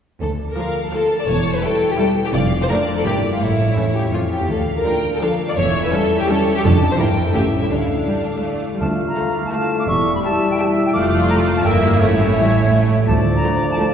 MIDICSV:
0, 0, Header, 1, 11, 480
1, 0, Start_track
1, 0, Key_signature, -1, "minor"
1, 0, Tempo, 357569
1, 287, Time_signature, 3, 2, 24, 8
1, 18712, End_track
2, 0, Start_track
2, 0, Title_t, "Flute"
2, 0, Program_c, 0, 73
2, 11813, Note_on_c, 0, 81, 58
2, 11895, Note_off_c, 0, 81, 0
2, 12175, Note_on_c, 0, 82, 58
2, 12655, Note_off_c, 0, 82, 0
2, 12683, Note_on_c, 0, 81, 61
2, 12773, Note_off_c, 0, 81, 0
2, 12781, Note_on_c, 0, 81, 65
2, 13133, Note_off_c, 0, 81, 0
2, 13141, Note_on_c, 0, 86, 68
2, 13197, Note_off_c, 0, 86, 0
2, 13256, Note_on_c, 0, 85, 71
2, 13613, Note_off_c, 0, 85, 0
2, 13624, Note_on_c, 0, 83, 62
2, 13678, Note_off_c, 0, 83, 0
2, 13736, Note_on_c, 0, 81, 68
2, 14088, Note_off_c, 0, 81, 0
2, 14102, Note_on_c, 0, 79, 68
2, 14155, Note_off_c, 0, 79, 0
2, 14195, Note_on_c, 0, 81, 75
2, 14277, Note_off_c, 0, 81, 0
2, 14572, Note_on_c, 0, 79, 73
2, 14626, Note_off_c, 0, 79, 0
2, 14667, Note_on_c, 0, 86, 74
2, 14750, Note_off_c, 0, 86, 0
2, 15052, Note_on_c, 0, 84, 77
2, 15147, Note_off_c, 0, 84, 0
2, 15156, Note_on_c, 0, 82, 76
2, 15236, Note_off_c, 0, 82, 0
2, 15518, Note_on_c, 0, 81, 69
2, 15572, Note_off_c, 0, 81, 0
2, 15621, Note_on_c, 0, 79, 69
2, 15704, Note_off_c, 0, 79, 0
2, 16017, Note_on_c, 0, 77, 58
2, 16068, Note_off_c, 0, 77, 0
2, 16109, Note_on_c, 0, 76, 69
2, 17299, Note_off_c, 0, 76, 0
2, 17540, Note_on_c, 0, 81, 66
2, 17625, Note_off_c, 0, 81, 0
2, 17919, Note_on_c, 0, 82, 65
2, 18390, Note_off_c, 0, 82, 0
2, 18398, Note_on_c, 0, 81, 63
2, 18455, Note_off_c, 0, 81, 0
2, 18514, Note_on_c, 0, 81, 66
2, 18596, Note_off_c, 0, 81, 0
2, 18712, End_track
3, 0, Start_track
3, 0, Title_t, "Violin section"
3, 0, Program_c, 1, 48
3, 765, Note_on_c, 1, 77, 44
3, 1211, Note_off_c, 1, 77, 0
3, 1247, Note_on_c, 1, 81, 51
3, 2179, Note_on_c, 1, 79, 53
3, 2194, Note_off_c, 1, 81, 0
3, 3132, Note_off_c, 1, 79, 0
3, 3132, Note_on_c, 1, 77, 57
3, 3601, Note_off_c, 1, 77, 0
3, 3606, Note_on_c, 1, 74, 63
3, 4559, Note_off_c, 1, 74, 0
3, 4591, Note_on_c, 1, 73, 42
3, 5782, Note_off_c, 1, 73, 0
3, 6047, Note_on_c, 1, 77, 41
3, 6495, Note_off_c, 1, 77, 0
3, 6532, Note_on_c, 1, 79, 50
3, 7001, Note_off_c, 1, 79, 0
3, 7004, Note_on_c, 1, 77, 52
3, 7474, Note_off_c, 1, 77, 0
3, 7488, Note_on_c, 1, 76, 56
3, 8425, Note_off_c, 1, 76, 0
3, 8440, Note_on_c, 1, 73, 59
3, 8905, Note_off_c, 1, 73, 0
3, 8924, Note_on_c, 1, 81, 59
3, 9382, Note_off_c, 1, 81, 0
3, 9388, Note_on_c, 1, 79, 59
3, 9857, Note_off_c, 1, 79, 0
3, 9873, Note_on_c, 1, 76, 52
3, 10356, Note_off_c, 1, 76, 0
3, 10357, Note_on_c, 1, 77, 41
3, 11583, Note_off_c, 1, 77, 0
3, 12315, Note_on_c, 1, 77, 51
3, 12671, Note_off_c, 1, 77, 0
3, 12795, Note_on_c, 1, 77, 49
3, 13150, Note_off_c, 1, 77, 0
3, 13750, Note_on_c, 1, 76, 52
3, 14100, Note_off_c, 1, 76, 0
3, 14215, Note_on_c, 1, 76, 59
3, 14568, Note_off_c, 1, 76, 0
3, 14680, Note_on_c, 1, 74, 50
3, 15580, Note_off_c, 1, 74, 0
3, 15638, Note_on_c, 1, 76, 57
3, 16120, Note_off_c, 1, 76, 0
3, 16123, Note_on_c, 1, 73, 47
3, 17306, Note_off_c, 1, 73, 0
3, 18058, Note_on_c, 1, 74, 51
3, 18412, Note_off_c, 1, 74, 0
3, 18522, Note_on_c, 1, 74, 52
3, 18712, Note_off_c, 1, 74, 0
3, 18712, End_track
4, 0, Start_track
4, 0, Title_t, "Oboe"
4, 0, Program_c, 2, 68
4, 11812, Note_on_c, 2, 77, 49
4, 13267, Note_on_c, 2, 76, 52
4, 13287, Note_off_c, 2, 77, 0
4, 14689, Note_off_c, 2, 76, 0
4, 14698, Note_on_c, 2, 77, 60
4, 15657, Note_on_c, 2, 76, 52
4, 15677, Note_off_c, 2, 77, 0
4, 16106, Note_on_c, 2, 73, 54
4, 16126, Note_off_c, 2, 76, 0
4, 17322, Note_off_c, 2, 73, 0
4, 17563, Note_on_c, 2, 74, 52
4, 18712, Note_off_c, 2, 74, 0
4, 18712, End_track
5, 0, Start_track
5, 0, Title_t, "Violin section"
5, 0, Program_c, 3, 48
5, 283, Note_on_c, 3, 69, 51
5, 391, Note_off_c, 3, 69, 0
5, 655, Note_on_c, 3, 70, 52
5, 1121, Note_off_c, 3, 70, 0
5, 1139, Note_on_c, 3, 69, 53
5, 1233, Note_off_c, 3, 69, 0
5, 1249, Note_on_c, 3, 69, 61
5, 1598, Note_off_c, 3, 69, 0
5, 1611, Note_on_c, 3, 74, 60
5, 1717, Note_on_c, 3, 73, 60
5, 1723, Note_off_c, 3, 74, 0
5, 2066, Note_off_c, 3, 73, 0
5, 2074, Note_on_c, 3, 71, 63
5, 2193, Note_off_c, 3, 71, 0
5, 2193, Note_on_c, 3, 69, 67
5, 2548, Note_off_c, 3, 69, 0
5, 2560, Note_on_c, 3, 67, 62
5, 2662, Note_on_c, 3, 69, 79
5, 2672, Note_off_c, 3, 67, 0
5, 2770, Note_off_c, 3, 69, 0
5, 3015, Note_on_c, 3, 67, 71
5, 3064, Note_off_c, 3, 67, 0
5, 3128, Note_on_c, 3, 74, 79
5, 3235, Note_off_c, 3, 74, 0
5, 3506, Note_on_c, 3, 72, 72
5, 3552, Note_off_c, 3, 72, 0
5, 3603, Note_on_c, 3, 70, 65
5, 3711, Note_off_c, 3, 70, 0
5, 3973, Note_on_c, 3, 69, 67
5, 4089, Note_on_c, 3, 67, 72
5, 4092, Note_off_c, 3, 69, 0
5, 4196, Note_off_c, 3, 67, 0
5, 4461, Note_on_c, 3, 65, 52
5, 4580, Note_off_c, 3, 65, 0
5, 4582, Note_on_c, 3, 64, 57
5, 5299, Note_on_c, 3, 67, 44
5, 5313, Note_off_c, 3, 64, 0
5, 5399, Note_off_c, 3, 67, 0
5, 5550, Note_on_c, 3, 65, 49
5, 5649, Note_off_c, 3, 65, 0
5, 5791, Note_on_c, 3, 67, 44
5, 6034, Note_off_c, 3, 67, 0
5, 6044, Note_on_c, 3, 69, 51
5, 6151, Note_off_c, 3, 69, 0
5, 6395, Note_on_c, 3, 70, 58
5, 6873, Note_off_c, 3, 70, 0
5, 6895, Note_on_c, 3, 69, 55
5, 6942, Note_off_c, 3, 69, 0
5, 6996, Note_on_c, 3, 69, 62
5, 7104, Note_off_c, 3, 69, 0
5, 7367, Note_on_c, 3, 74, 67
5, 7415, Note_off_c, 3, 74, 0
5, 7473, Note_on_c, 3, 73, 70
5, 7830, Note_off_c, 3, 73, 0
5, 7842, Note_on_c, 3, 71, 64
5, 7960, Note_off_c, 3, 71, 0
5, 7962, Note_on_c, 3, 69, 76
5, 8315, Note_off_c, 3, 69, 0
5, 8323, Note_on_c, 3, 67, 70
5, 8436, Note_on_c, 3, 69, 90
5, 8440, Note_off_c, 3, 67, 0
5, 8795, Note_off_c, 3, 69, 0
5, 8808, Note_on_c, 3, 67, 70
5, 8918, Note_on_c, 3, 69, 70
5, 8919, Note_off_c, 3, 67, 0
5, 9026, Note_off_c, 3, 69, 0
5, 9274, Note_on_c, 3, 72, 73
5, 9320, Note_off_c, 3, 72, 0
5, 9384, Note_on_c, 3, 70, 60
5, 9492, Note_off_c, 3, 70, 0
5, 9747, Note_on_c, 3, 69, 60
5, 9795, Note_off_c, 3, 69, 0
5, 9856, Note_on_c, 3, 67, 65
5, 9964, Note_off_c, 3, 67, 0
5, 10235, Note_on_c, 3, 64, 44
5, 10283, Note_off_c, 3, 64, 0
5, 10341, Note_on_c, 3, 62, 42
5, 10382, Note_off_c, 3, 62, 0
5, 10446, Note_on_c, 3, 64, 36
5, 10534, Note_on_c, 3, 62, 43
5, 10544, Note_off_c, 3, 64, 0
5, 11575, Note_off_c, 3, 62, 0
5, 12313, Note_on_c, 3, 65, 48
5, 12670, Note_off_c, 3, 65, 0
5, 12783, Note_on_c, 3, 65, 57
5, 13144, Note_off_c, 3, 65, 0
5, 13741, Note_on_c, 3, 67, 49
5, 14095, Note_off_c, 3, 67, 0
5, 14218, Note_on_c, 3, 67, 62
5, 14570, Note_off_c, 3, 67, 0
5, 14688, Note_on_c, 3, 65, 53
5, 15583, Note_off_c, 3, 65, 0
5, 15650, Note_on_c, 3, 64, 58
5, 16116, Note_off_c, 3, 64, 0
5, 16133, Note_on_c, 3, 64, 52
5, 17312, Note_off_c, 3, 64, 0
5, 18048, Note_on_c, 3, 65, 46
5, 18407, Note_off_c, 3, 65, 0
5, 18536, Note_on_c, 3, 65, 54
5, 18712, Note_off_c, 3, 65, 0
5, 18712, End_track
6, 0, Start_track
6, 0, Title_t, "French horn section"
6, 0, Program_c, 4, 60
6, 11824, Note_on_c, 4, 65, 47
6, 11827, Note_on_c, 4, 57, 45
6, 13217, Note_off_c, 4, 65, 0
6, 13218, Note_off_c, 4, 57, 0
6, 13258, Note_on_c, 4, 64, 45
6, 13266, Note_on_c, 4, 55, 46
6, 14685, Note_off_c, 4, 64, 0
6, 14689, Note_off_c, 4, 55, 0
6, 14696, Note_on_c, 4, 65, 50
6, 14705, Note_on_c, 4, 57, 53
6, 15622, Note_off_c, 4, 65, 0
6, 15627, Note_off_c, 4, 57, 0
6, 15644, Note_on_c, 4, 58, 54
6, 15654, Note_on_c, 4, 64, 50
6, 16115, Note_on_c, 4, 61, 48
6, 16120, Note_on_c, 4, 57, 50
6, 16122, Note_off_c, 4, 58, 0
6, 16127, Note_off_c, 4, 64, 0
6, 17302, Note_off_c, 4, 61, 0
6, 17329, Note_off_c, 4, 57, 0
6, 17567, Note_on_c, 4, 53, 47
6, 17570, Note_on_c, 4, 62, 49
6, 18712, Note_off_c, 4, 53, 0
6, 18712, Note_off_c, 4, 62, 0
6, 18712, End_track
7, 0, Start_track
7, 0, Title_t, "Harp"
7, 0, Program_c, 5, 46
7, 284, Note_on_c, 5, 50, 40
7, 530, Note_on_c, 5, 62, 29
7, 769, Note_on_c, 5, 57, 29
7, 1006, Note_on_c, 5, 58, 27
7, 1238, Note_off_c, 5, 57, 0
7, 1255, Note_on_c, 5, 57, 34
7, 1413, Note_off_c, 5, 58, 0
7, 1478, Note_off_c, 5, 62, 0
7, 1494, Note_on_c, 5, 62, 32
7, 1726, Note_on_c, 5, 52, 47
7, 1739, Note_off_c, 5, 50, 0
7, 1745, Note_off_c, 5, 57, 0
7, 1746, Note_off_c, 5, 62, 0
7, 1958, Note_on_c, 5, 61, 36
7, 2191, Note_on_c, 5, 64, 38
7, 2426, Note_on_c, 5, 66, 34
7, 2642, Note_off_c, 5, 64, 0
7, 2658, Note_on_c, 5, 64, 43
7, 2829, Note_off_c, 5, 66, 0
7, 2876, Note_off_c, 5, 61, 0
7, 2892, Note_on_c, 5, 61, 42
7, 3133, Note_on_c, 5, 53, 60
7, 3153, Note_off_c, 5, 61, 0
7, 3154, Note_off_c, 5, 64, 0
7, 3160, Note_off_c, 5, 52, 0
7, 3375, Note_on_c, 5, 65, 44
7, 3610, Note_on_c, 5, 62, 45
7, 3864, Note_on_c, 5, 64, 38
7, 4098, Note_on_c, 5, 43, 48
7, 4111, Note_off_c, 5, 53, 0
7, 4113, Note_off_c, 5, 62, 0
7, 4114, Note_off_c, 5, 65, 0
7, 4270, Note_off_c, 5, 64, 0
7, 4344, Note_on_c, 5, 70, 34
7, 4352, Note_on_c, 5, 76, 39
7, 4589, Note_on_c, 5, 45, 45
7, 4603, Note_off_c, 5, 43, 0
7, 4604, Note_off_c, 5, 70, 0
7, 4827, Note_on_c, 5, 64, 34
7, 5068, Note_on_c, 5, 52, 32
7, 5311, Note_on_c, 5, 53, 26
7, 5538, Note_off_c, 5, 52, 0
7, 5554, Note_on_c, 5, 52, 29
7, 5727, Note_off_c, 5, 53, 0
7, 5782, Note_off_c, 5, 64, 0
7, 5798, Note_on_c, 5, 64, 29
7, 6036, Note_on_c, 5, 50, 43
7, 6062, Note_off_c, 5, 64, 0
7, 6063, Note_off_c, 5, 52, 0
7, 6067, Note_off_c, 5, 45, 0
7, 6071, Note_off_c, 5, 76, 0
7, 6275, Note_on_c, 5, 65, 33
7, 6522, Note_on_c, 5, 57, 35
7, 6768, Note_on_c, 5, 58, 30
7, 6991, Note_off_c, 5, 57, 0
7, 7007, Note_on_c, 5, 57, 36
7, 7176, Note_off_c, 5, 58, 0
7, 7230, Note_off_c, 5, 65, 0
7, 7246, Note_on_c, 5, 65, 38
7, 7483, Note_on_c, 5, 40, 48
7, 7501, Note_off_c, 5, 50, 0
7, 7504, Note_off_c, 5, 57, 0
7, 7504, Note_off_c, 5, 65, 0
7, 7725, Note_on_c, 5, 64, 40
7, 7954, Note_on_c, 5, 52, 48
7, 8204, Note_on_c, 5, 54, 40
7, 8422, Note_off_c, 5, 52, 0
7, 8438, Note_on_c, 5, 52, 46
7, 8610, Note_off_c, 5, 54, 0
7, 8668, Note_off_c, 5, 64, 0
7, 8684, Note_on_c, 5, 64, 49
7, 8924, Note_on_c, 5, 41, 60
7, 8933, Note_off_c, 5, 52, 0
7, 8934, Note_off_c, 5, 40, 0
7, 8937, Note_off_c, 5, 64, 0
7, 9144, Note_on_c, 5, 65, 39
7, 9156, Note_on_c, 5, 74, 46
7, 9383, Note_on_c, 5, 43, 54
7, 9405, Note_off_c, 5, 65, 0
7, 9407, Note_off_c, 5, 74, 0
7, 9410, Note_off_c, 5, 41, 0
7, 9621, Note_on_c, 5, 64, 36
7, 9635, Note_on_c, 5, 76, 41
7, 9868, Note_on_c, 5, 45, 49
7, 9883, Note_off_c, 5, 43, 0
7, 10090, Note_off_c, 5, 64, 0
7, 10102, Note_on_c, 5, 64, 31
7, 10114, Note_on_c, 5, 73, 37
7, 10351, Note_on_c, 5, 50, 38
7, 10371, Note_off_c, 5, 64, 0
7, 10373, Note_off_c, 5, 45, 0
7, 10373, Note_off_c, 5, 73, 0
7, 10374, Note_off_c, 5, 76, 0
7, 10595, Note_on_c, 5, 57, 26
7, 10842, Note_on_c, 5, 62, 27
7, 11086, Note_on_c, 5, 64, 24
7, 11315, Note_off_c, 5, 62, 0
7, 11332, Note_on_c, 5, 62, 28
7, 11505, Note_off_c, 5, 64, 0
7, 11557, Note_off_c, 5, 57, 0
7, 11573, Note_on_c, 5, 57, 28
7, 11793, Note_off_c, 5, 50, 0
7, 11809, Note_on_c, 5, 50, 51
7, 12045, Note_off_c, 5, 57, 0
7, 12061, Note_on_c, 5, 57, 39
7, 12280, Note_off_c, 5, 62, 0
7, 12296, Note_on_c, 5, 62, 37
7, 12542, Note_on_c, 5, 64, 34
7, 12776, Note_off_c, 5, 62, 0
7, 12793, Note_on_c, 5, 62, 39
7, 12955, Note_off_c, 5, 64, 0
7, 13013, Note_off_c, 5, 57, 0
7, 13029, Note_on_c, 5, 57, 40
7, 13261, Note_on_c, 5, 52, 47
7, 13282, Note_off_c, 5, 50, 0
7, 13289, Note_off_c, 5, 57, 0
7, 13291, Note_off_c, 5, 62, 0
7, 13498, Note_on_c, 5, 55, 42
7, 13736, Note_on_c, 5, 64, 42
7, 13978, Note_on_c, 5, 66, 37
7, 14194, Note_off_c, 5, 64, 0
7, 14210, Note_on_c, 5, 64, 45
7, 14381, Note_off_c, 5, 66, 0
7, 14427, Note_off_c, 5, 55, 0
7, 14443, Note_on_c, 5, 55, 45
7, 14687, Note_on_c, 5, 53, 61
7, 14704, Note_off_c, 5, 55, 0
7, 14705, Note_off_c, 5, 52, 0
7, 14706, Note_off_c, 5, 64, 0
7, 14918, Note_on_c, 5, 65, 43
7, 15154, Note_on_c, 5, 57, 46
7, 15395, Note_on_c, 5, 58, 41
7, 15634, Note_on_c, 5, 43, 54
7, 15653, Note_off_c, 5, 57, 0
7, 15653, Note_off_c, 5, 65, 0
7, 15656, Note_off_c, 5, 53, 0
7, 15803, Note_off_c, 5, 58, 0
7, 15868, Note_on_c, 5, 64, 41
7, 15877, Note_on_c, 5, 76, 43
7, 16119, Note_on_c, 5, 45, 51
7, 16137, Note_off_c, 5, 43, 0
7, 16351, Note_on_c, 5, 57, 39
7, 16597, Note_on_c, 5, 52, 38
7, 16836, Note_on_c, 5, 53, 32
7, 17071, Note_off_c, 5, 52, 0
7, 17087, Note_on_c, 5, 52, 39
7, 17252, Note_off_c, 5, 53, 0
7, 17306, Note_off_c, 5, 57, 0
7, 17322, Note_on_c, 5, 57, 37
7, 17566, Note_on_c, 5, 50, 51
7, 17583, Note_off_c, 5, 64, 0
7, 17588, Note_off_c, 5, 45, 0
7, 17588, Note_off_c, 5, 52, 0
7, 17588, Note_off_c, 5, 76, 0
7, 17795, Note_off_c, 5, 57, 0
7, 17811, Note_on_c, 5, 57, 39
7, 18049, Note_on_c, 5, 62, 39
7, 18284, Note_on_c, 5, 64, 33
7, 18515, Note_off_c, 5, 62, 0
7, 18531, Note_on_c, 5, 62, 41
7, 18695, Note_off_c, 5, 64, 0
7, 18712, Note_off_c, 5, 50, 0
7, 18712, Note_off_c, 5, 57, 0
7, 18712, Note_off_c, 5, 62, 0
7, 18712, End_track
8, 0, Start_track
8, 0, Title_t, "Bassoon"
8, 0, Program_c, 6, 70
8, 11811, Note_on_c, 6, 57, 44
8, 13263, Note_on_c, 6, 55, 46
8, 13283, Note_off_c, 6, 57, 0
8, 14679, Note_on_c, 6, 57, 51
8, 14700, Note_off_c, 6, 55, 0
8, 15637, Note_on_c, 6, 58, 49
8, 15657, Note_off_c, 6, 57, 0
8, 16107, Note_off_c, 6, 58, 0
8, 16115, Note_on_c, 6, 57, 49
8, 17302, Note_off_c, 6, 57, 0
8, 17585, Note_on_c, 6, 53, 50
8, 18712, Note_off_c, 6, 53, 0
8, 18712, End_track
9, 0, Start_track
9, 0, Title_t, "Viola section"
9, 0, Program_c, 7, 48
9, 779, Note_on_c, 7, 53, 40
9, 782, Note_on_c, 7, 65, 43
9, 1130, Note_off_c, 7, 53, 0
9, 1132, Note_off_c, 7, 65, 0
9, 1255, Note_on_c, 7, 65, 41
9, 1257, Note_on_c, 7, 53, 39
9, 1606, Note_off_c, 7, 65, 0
9, 1607, Note_off_c, 7, 53, 0
9, 2199, Note_on_c, 7, 64, 52
9, 2204, Note_on_c, 7, 55, 52
9, 2548, Note_off_c, 7, 64, 0
9, 2551, Note_off_c, 7, 55, 0
9, 2664, Note_on_c, 7, 64, 54
9, 2671, Note_on_c, 7, 55, 56
9, 3017, Note_off_c, 7, 64, 0
9, 3021, Note_off_c, 7, 55, 0
9, 3627, Note_on_c, 7, 57, 57
9, 3635, Note_on_c, 7, 62, 60
9, 3979, Note_off_c, 7, 57, 0
9, 3983, Note_off_c, 7, 62, 0
9, 4113, Note_on_c, 7, 64, 50
9, 4121, Note_on_c, 7, 58, 51
9, 4466, Note_off_c, 7, 64, 0
9, 4470, Note_off_c, 7, 58, 0
9, 5071, Note_on_c, 7, 61, 43
9, 5076, Note_on_c, 7, 57, 42
9, 5433, Note_off_c, 7, 61, 0
9, 5436, Note_off_c, 7, 57, 0
9, 5542, Note_on_c, 7, 57, 36
9, 5547, Note_on_c, 7, 61, 39
9, 5912, Note_off_c, 7, 57, 0
9, 5915, Note_off_c, 7, 61, 0
9, 6518, Note_on_c, 7, 62, 43
9, 6519, Note_on_c, 7, 53, 45
9, 6881, Note_off_c, 7, 62, 0
9, 6882, Note_off_c, 7, 53, 0
9, 7014, Note_on_c, 7, 62, 47
9, 7017, Note_on_c, 7, 53, 47
9, 7367, Note_off_c, 7, 62, 0
9, 7368, Note_off_c, 7, 53, 0
9, 7963, Note_on_c, 7, 55, 56
9, 7966, Note_on_c, 7, 61, 57
9, 8320, Note_off_c, 7, 55, 0
9, 8322, Note_off_c, 7, 61, 0
9, 8460, Note_on_c, 7, 61, 63
9, 8465, Note_on_c, 7, 55, 58
9, 8805, Note_off_c, 7, 61, 0
9, 8807, Note_off_c, 7, 55, 0
9, 8927, Note_on_c, 7, 53, 59
9, 8930, Note_on_c, 7, 62, 56
9, 9272, Note_off_c, 7, 53, 0
9, 9274, Note_off_c, 7, 62, 0
9, 9382, Note_on_c, 7, 52, 58
9, 9390, Note_on_c, 7, 64, 58
9, 9740, Note_off_c, 7, 52, 0
9, 9745, Note_off_c, 7, 64, 0
9, 9869, Note_on_c, 7, 52, 44
9, 9870, Note_on_c, 7, 61, 49
9, 10229, Note_off_c, 7, 52, 0
9, 10230, Note_off_c, 7, 61, 0
9, 10835, Note_on_c, 7, 55, 42
9, 10942, Note_off_c, 7, 55, 0
9, 11224, Note_on_c, 7, 57, 31
9, 11698, Note_off_c, 7, 57, 0
9, 11719, Note_on_c, 7, 55, 30
9, 11829, Note_off_c, 7, 55, 0
9, 12305, Note_on_c, 7, 57, 51
9, 12666, Note_off_c, 7, 57, 0
9, 12786, Note_on_c, 7, 57, 47
9, 13146, Note_off_c, 7, 57, 0
9, 13756, Note_on_c, 7, 55, 53
9, 14103, Note_off_c, 7, 55, 0
9, 14212, Note_on_c, 7, 55, 56
9, 14566, Note_off_c, 7, 55, 0
9, 14686, Note_on_c, 7, 57, 59
9, 15582, Note_off_c, 7, 57, 0
9, 15642, Note_on_c, 7, 58, 53
9, 16121, Note_on_c, 7, 57, 51
9, 16122, Note_off_c, 7, 58, 0
9, 16556, Note_off_c, 7, 57, 0
9, 16608, Note_on_c, 7, 55, 56
9, 16716, Note_off_c, 7, 55, 0
9, 16988, Note_on_c, 7, 57, 42
9, 17451, Note_off_c, 7, 57, 0
9, 17474, Note_on_c, 7, 55, 39
9, 17579, Note_off_c, 7, 55, 0
9, 18051, Note_on_c, 7, 57, 49
9, 18409, Note_off_c, 7, 57, 0
9, 18530, Note_on_c, 7, 57, 55
9, 18712, Note_off_c, 7, 57, 0
9, 18712, End_track
10, 0, Start_track
10, 0, Title_t, "Cello section"
10, 0, Program_c, 8, 48
10, 288, Note_on_c, 8, 38, 48
10, 669, Note_off_c, 8, 38, 0
10, 1726, Note_on_c, 8, 40, 51
10, 2096, Note_off_c, 8, 40, 0
10, 3135, Note_on_c, 8, 41, 68
10, 3512, Note_off_c, 8, 41, 0
10, 4097, Note_on_c, 8, 43, 63
10, 4480, Note_off_c, 8, 43, 0
10, 4571, Note_on_c, 8, 45, 46
10, 4963, Note_off_c, 8, 45, 0
10, 5066, Note_on_c, 8, 40, 39
10, 5173, Note_off_c, 8, 40, 0
10, 5425, Note_on_c, 8, 41, 42
10, 5909, Note_off_c, 8, 41, 0
10, 5923, Note_on_c, 8, 40, 35
10, 5972, Note_off_c, 8, 40, 0
10, 6032, Note_on_c, 8, 38, 50
10, 6420, Note_off_c, 8, 38, 0
10, 7471, Note_on_c, 8, 40, 60
10, 7855, Note_off_c, 8, 40, 0
10, 8900, Note_on_c, 8, 41, 70
10, 9280, Note_off_c, 8, 41, 0
10, 9371, Note_on_c, 8, 43, 60
10, 9757, Note_off_c, 8, 43, 0
10, 9855, Note_on_c, 8, 45, 50
10, 10244, Note_off_c, 8, 45, 0
10, 10332, Note_on_c, 8, 50, 41
10, 10731, Note_off_c, 8, 50, 0
10, 11817, Note_on_c, 8, 38, 60
10, 12201, Note_off_c, 8, 38, 0
10, 13260, Note_on_c, 8, 40, 58
10, 13641, Note_off_c, 8, 40, 0
10, 14684, Note_on_c, 8, 41, 56
10, 15582, Note_off_c, 8, 41, 0
10, 15633, Note_on_c, 8, 43, 61
10, 16117, Note_off_c, 8, 43, 0
10, 16117, Note_on_c, 8, 45, 53
10, 17327, Note_off_c, 8, 45, 0
10, 17559, Note_on_c, 8, 38, 62
10, 17944, Note_off_c, 8, 38, 0
10, 18712, End_track
11, 0, Start_track
11, 0, Title_t, "Double bass section"
11, 0, Program_c, 10, 48
11, 291, Note_on_c, 10, 38, 48
11, 670, Note_off_c, 10, 38, 0
11, 1715, Note_on_c, 10, 28, 54
11, 2091, Note_off_c, 10, 28, 0
11, 3144, Note_on_c, 10, 29, 70
11, 3517, Note_off_c, 10, 29, 0
11, 4096, Note_on_c, 10, 31, 59
11, 4480, Note_off_c, 10, 31, 0
11, 4594, Note_on_c, 10, 33, 50
11, 4975, Note_off_c, 10, 33, 0
11, 6046, Note_on_c, 10, 38, 52
11, 6427, Note_off_c, 10, 38, 0
11, 7494, Note_on_c, 10, 28, 65
11, 7867, Note_off_c, 10, 28, 0
11, 8916, Note_on_c, 10, 29, 69
11, 9289, Note_off_c, 10, 29, 0
11, 9384, Note_on_c, 10, 31, 61
11, 9764, Note_off_c, 10, 31, 0
11, 9859, Note_on_c, 10, 33, 53
11, 10246, Note_off_c, 10, 33, 0
11, 10352, Note_on_c, 10, 38, 46
11, 10741, Note_off_c, 10, 38, 0
11, 11817, Note_on_c, 10, 38, 57
11, 12201, Note_off_c, 10, 38, 0
11, 13275, Note_on_c, 10, 28, 63
11, 13649, Note_off_c, 10, 28, 0
11, 14693, Note_on_c, 10, 29, 59
11, 15586, Note_off_c, 10, 29, 0
11, 15638, Note_on_c, 10, 31, 58
11, 16115, Note_on_c, 10, 33, 56
11, 16120, Note_off_c, 10, 31, 0
11, 17326, Note_off_c, 10, 33, 0
11, 17568, Note_on_c, 10, 38, 63
11, 17949, Note_off_c, 10, 38, 0
11, 18712, End_track
0, 0, End_of_file